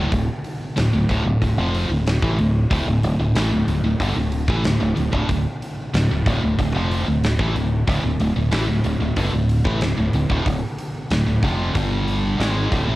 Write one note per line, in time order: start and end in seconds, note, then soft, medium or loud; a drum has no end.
0.00 0.11 D1 medium
0.00 0.11 D2 medium
0.00 0.11 A2 medium
0.12 0.27 D1 medium
0.12 0.28 D2 medium
0.12 0.28 A2 medium
0.12 kick loud
0.12 open hi-hat medium
0.44 open hi-hat medium
0.76 0.92 D1 medium
0.76 0.92 D2 medium
0.76 0.93 A2 medium
0.76 snare loud
0.76 open hi-hat medium
0.93 1.08 D1 medium
0.93 1.08 D2 medium
0.93 1.09 A2 medium
1.09 1.24 D1 medium
1.09 1.24 D2 medium
1.09 1.25 A2 medium
1.09 kick loud
1.09 open hi-hat medium
1.25 1.41 D1 medium
1.25 1.41 D2 medium
1.25 1.41 A2 medium
1.42 1.57 D1 medium
1.42 1.58 D2 medium
1.42 1.58 A2 medium
1.42 kick medium
1.42 open hi-hat medium
1.57 1.88 F1 loud
1.57 1.89 F2 medium
1.57 1.89 C3 medium
1.57 1.90 F3 loud
1.75 open hi-hat medium
1.89 2.20 D1 medium
1.89 2.16 D2 medium
1.89 2.16 A2 medium
2.07 snare loud
2.07 open hi-hat medium
2.22 2.37 A1 medium
2.22 2.38 A2 medium
2.22 2.38 E3 medium
2.22 kick loud
2.38 2.68 D1 medium
2.38 2.64 D2 medium
2.38 2.65 A2 medium
2.38 open hi-hat medium
2.70 2.86 D1 medium
2.70 2.86 D2 medium
2.70 2.86 A2 loud
2.70 kick loud
2.70 open hi-hat medium
2.86 3.02 D1 medium
2.86 3.03 D2 medium
2.86 3.03 A2 medium
3.03 3.18 D1 medium
3.03 3.18 D2 medium
3.03 3.19 A2 medium
3.03 open hi-hat medium
3.19 3.34 D1 medium
3.19 3.36 D2 medium
3.19 3.35 A2 medium
3.35 3.50 A1 medium
3.35 3.51 A2 medium
3.35 3.51 E3 loud
3.35 snare loud
3.35 open hi-hat medium
3.51 3.66 D1 medium
3.51 3.67 D2 medium
3.51 3.67 A2 medium
3.67 3.82 D1 medium
3.67 3.83 D2 medium
3.67 3.83 A2 medium
3.67 open hi-hat medium
3.84 3.99 D1 medium
3.84 4.00 D2 medium
3.84 4.00 A2 medium
4.00 4.15 G1 medium
4.00 4.15 G2 medium
4.00 4.16 D3 loud
4.00 kick medium
4.00 open hi-hat medium
4.16 4.46 D1 medium
4.16 4.42 D2 medium
4.16 4.42 A2 medium
4.32 open hi-hat medium
4.48 4.63 A1 medium
4.48 4.64 A2 medium
4.48 4.64 E3 loud
4.48 kick loud
4.64 4.80 D1 medium
4.64 4.79 D2 medium
4.64 4.80 A2 medium
4.64 snare loud
4.64 open hi-hat medium
4.80 4.96 D1 medium
4.80 4.95 D2 medium
4.80 4.95 A2 medium
4.96 5.12 D1 medium
4.96 5.11 D2 medium
4.96 5.12 A2 medium
4.96 open hi-hat medium
5.12 5.28 D1 medium
5.12 5.28 D2 medium
5.12 5.28 A2 medium
5.12 kick loud
5.29 5.44 D1 medium
5.29 5.46 D2 medium
5.29 5.46 A2 medium
5.29 kick loud
5.29 open hi-hat medium
5.62 open hi-hat medium
5.94 6.09 D1 medium
5.94 6.10 D2 medium
5.94 6.10 A2 medium
5.94 snare loud
5.94 open hi-hat medium
6.11 6.25 D1 medium
6.11 6.25 D2 medium
6.11 6.26 A2 medium
6.26 6.41 D1 medium
6.26 6.42 D2 medium
6.26 6.42 A2 loud
6.26 kick loud
6.26 open hi-hat medium
6.43 6.58 D1 medium
6.43 6.58 D2 medium
6.43 6.58 A2 medium
6.58 6.73 D1 medium
6.58 6.74 D2 medium
6.58 6.74 A2 medium
6.58 kick medium
6.58 open hi-hat medium
6.74 7.05 F1 medium
6.74 7.06 F2 loud
6.74 7.06 C3 medium
6.74 7.06 F3 medium
6.91 open hi-hat medium
7.07 7.37 D1 medium
7.07 7.33 D2 medium
7.07 7.33 A2 medium
7.24 snare loud
7.24 open hi-hat medium
7.39 7.54 A1 medium
7.39 7.54 A2 medium
7.39 7.55 E3 medium
7.39 kick loud
7.56 7.85 D1 medium
7.56 7.82 D2 medium
7.56 7.82 A2 medium
7.56 open hi-hat soft
7.87 8.02 D1 medium
7.87 8.02 D2 loud
7.87 8.03 A2 loud
7.87 kick loud
7.87 open hi-hat medium
8.03 8.19 D1 medium
8.03 8.19 D2 medium
8.03 8.19 A2 medium
8.20 8.35 D1 medium
8.20 8.35 D2 medium
8.20 8.35 A2 medium
8.20 open hi-hat medium
8.36 8.51 D1 medium
8.36 8.51 D2 medium
8.36 8.50 A2 medium
8.51 8.67 A1 medium
8.51 8.67 A2 medium
8.51 8.67 E3 medium
8.51 snare loud
8.51 open hi-hat medium
8.68 8.83 D1 medium
8.68 8.83 D2 medium
8.68 8.83 A2 medium
8.84 9.00 D1 medium
8.84 8.99 D2 medium
8.84 9.00 A2 medium
8.84 open hi-hat medium
9.00 9.16 D1 medium
9.00 9.17 D2 medium
9.00 9.17 A2 medium
9.16 9.32 G1 medium
9.16 9.32 G2 loud
9.16 9.32 D3 loud
9.16 kick medium
9.16 open hi-hat medium
9.33 9.63 D1 medium
9.33 9.59 D2 medium
9.33 9.59 A2 medium
9.49 open hi-hat medium
9.65 9.80 A1 medium
9.65 9.80 A2 medium
9.65 9.80 E3 medium
9.65 kick loud
9.81 9.97 D1 medium
9.81 9.97 D2 medium
9.81 9.97 A2 medium
9.81 snare loud
9.81 open hi-hat medium
9.98 10.13 D1 medium
9.98 10.13 D2 medium
9.98 10.14 A2 medium
10.13 10.29 D1 medium
10.13 10.28 D2 medium
10.13 10.29 A2 medium
10.13 open hi-hat medium
10.30 10.45 D1 medium
10.30 10.45 D2 medium
10.30 10.45 A2 medium
10.30 kick loud
10.46 10.61 D1 medium
10.46 10.62 D2 medium
10.46 10.63 A2 medium
10.46 kick loud
10.46 open hi-hat medium
10.79 open hi-hat medium
11.10 11.25 D1 medium
11.10 11.25 D2 medium
11.10 11.26 A2 medium
11.10 snare loud
11.10 open hi-hat medium
11.26 11.42 D1 medium
11.26 11.43 D2 medium
11.26 11.43 A2 medium
11.43 11.73 F1 loud
11.43 11.74 F2 medium
11.43 11.75 C3 loud
11.43 11.75 F3 medium
11.43 kick loud
11.43 open hi-hat medium
11.74 12.35 G1 medium
11.74 12.38 G2 loud
11.74 12.38 D3 loud
11.74 12.39 G3 loud
11.74 kick loud
11.74 open hi-hat medium
12.08 open hi-hat medium
12.39 12.69 G#1 loud
12.39 12.71 G#2 medium
12.39 12.71 D#3 loud
12.39 12.71 G#3 loud
12.39 snare loud
12.39 open hi-hat medium
12.72 12.87 D1 medium
12.72 12.87 D2 medium
12.72 12.87 A2 loud
12.72 kick medium
12.72 open hi-hat medium
12.88 12.96 A1 medium
12.88 12.96 A2 medium
12.88 12.96 E3 loud